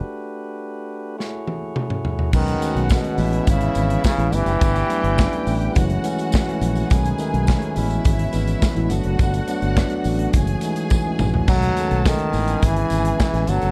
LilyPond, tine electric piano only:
\new Staff \with { instrumentName = "Tine electric piano" } { \time 4/4 \key a \lydian \tempo 4 = 105 r1 | <dis gis a cis'>8 <dis gis a cis'>8 <dis gis a cis'>8 <e gis b bis cis'>8. r16 <e gis b e'>8. <e gis b e'>16 <g a b cis' d'>8~ | <g a b cis' d'>16 r16 <fis a b d'>8 <g a b cis' d'>8. r16 <e gis a cis'>8 <e gis a cis'>8. <e gis a cis'>8. | <dis gis a cis'>8 <dis gis a cis'>8 <dis gis a cis'>8 <e gis b cis'>8. r16 <e gis b cis'>8. <e gis b e'>16 <fis a b d'>8~ |
<fis a b d'>16 r16 <fis a b d'>8 <fis a b d'>8. r16 <e gis a cis'>8 <e gis a dis'>8. <e gis a cis'>8. | <dis gis a>8 <dis gis a cis'>8 <dis gis a cis'>8 <e gis b bis cis'>8. r16 <e gis b cis'>8. <e gis b cis'>16 <fis a b d'>8 | }